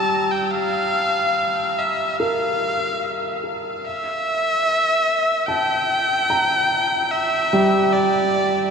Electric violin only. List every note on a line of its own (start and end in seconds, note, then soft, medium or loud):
0.00 0.33 A5 medium
0.32 0.53 G5 medium
0.51 1.80 F5 medium
1.79 2.20 E5 medium
2.20 3.39 F5 medium
3.86 5.48 E5 loud
5.46 7.12 G5 loud
7.11 7.94 E5 medium
7.93 8.71 D5 medium